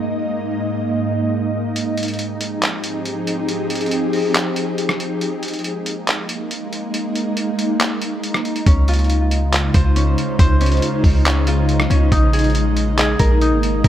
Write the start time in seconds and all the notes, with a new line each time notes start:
Already playing: G#2 G#3 A#3 D#4 D#5
1.76 F3 C4 D#4 G4 G#4, closed hi-hat
1.97 closed hi-hat
2.03 closed hi-hat
2.08 closed hi-hat
2.14 closed hi-hat
2.19 closed hi-hat
2.41 closed hi-hat
2.62 clap, closed hi-hat
2.84 closed hi-hat
3.05 closed hi-hat
3.27 closed hi-hat
3.49 closed hi-hat
3.70 closed hi-hat
3.75 closed hi-hat
3.81 closed hi-hat
3.86 closed hi-hat
3.91 closed hi-hat
4.13 open hi-hat
4.35 clap, closed hi-hat
4.56 closed hi-hat
4.78 closed hi-hat
4.89 cross-stick
5.00 closed hi-hat
5.21 G#3 A#3 D#4, closed hi-hat
5.43 closed hi-hat
5.48 closed hi-hat
5.54 closed hi-hat
5.59 closed hi-hat
5.64 closed hi-hat
5.86 closed hi-hat
6.08 clap, closed hi-hat
6.29 closed hi-hat
6.51 closed hi-hat
6.73 closed hi-hat
6.94 closed hi-hat
7.15 closed hi-hat
7.37 closed hi-hat
7.59 closed hi-hat
7.80 clap, closed hi-hat
8.02 closed hi-hat
8.23 closed hi-hat
8.34 cross-stick
8.45 closed hi-hat
8.56 closed hi-hat
8.66 C#2 C#3 G#3 C#4 F4 C5, kick, closed hi-hat
8.88 F4, closed hi-hat
8.94 closed hi-hat
8.99 closed hi-hat
9.04 closed hi-hat
9.10 closed hi-hat
9.31 closed hi-hat
9.53 F4, clap, closed hi-hat
9.74 C#2 C5, kick, closed hi-hat
9.96 C#4, closed hi-hat
10.18 closed hi-hat
10.39 C#2 C5, kick, closed hi-hat
10.61 C#4, closed hi-hat
10.66 closed hi-hat
10.72 closed hi-hat
10.77 closed hi-hat
10.82 closed hi-hat
11.04 C#2, kick, open hi-hat
11.25 C#4, clap, closed hi-hat
11.47 F4, closed hi-hat
11.69 closed hi-hat
11.80 cross-stick
11.90 C#2 C#4, closed hi-hat
12.12 A#1 A#3 D#4, kick, closed hi-hat
12.33 G#4, closed hi-hat
12.39 closed hi-hat
12.44 closed hi-hat
12.50 closed hi-hat
12.55 closed hi-hat
12.77 closed hi-hat
12.98 G#4, clap, closed hi-hat
13.19 A#1 A#4, kick, closed hi-hat
13.41 D#4, closed hi-hat
13.52 G#1
13.63 closed hi-hat
13.84 A#1 A#4, kick, closed hi-hat